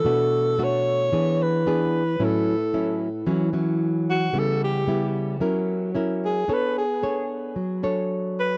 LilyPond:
<<
  \new Staff \with { instrumentName = "Alto saxophone" } { \time 4/4 \key a \major \tempo 4 = 112 a'4 cis''4. b'4. | a'4. r2 fis'8 | a'8 g'4 r2 gis'8 | b'8 gis'4 r2 b'8 | }
  \new Staff \with { instrumentName = "Nylon-string guitar" } { \time 4/4 \key a \major << { <a d' fis'>4 <a d' fis'>4 <b d' gis'>4 <b d' gis'>8 r8 | <fis cis' e'>8 r8 <fis cis' e'>8 r8 <fis cis' e'>8 <fis cis' e'>4. | <g b e'>4 <g b e'>4 <cis' e' ais'>4 <cis' e' ais'>4 | <d' a' cis''>8 r8 <d' a' cis''>4 r8 <d' a' cis''>4. | } \\ { b,2 e2 | a,2 e2 | cis2 fis2 | b2 fis2 | } >> }
>>